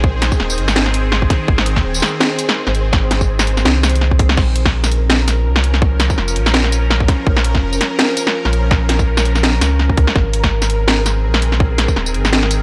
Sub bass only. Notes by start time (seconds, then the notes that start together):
Already playing: A#1
0.40 D#1
0.58 G#1
1.48 G#1
1.84 D#1
2.67 G#1
3.65 C2
4.38 A#1
5.46 C2
6.18 F1
6.36 A#1
7.27 A#1
7.63 F1
8.45 A#1
9.61 C#2
10.16 G#1
11.24 A#1
11.97 D#1
12.15 G#1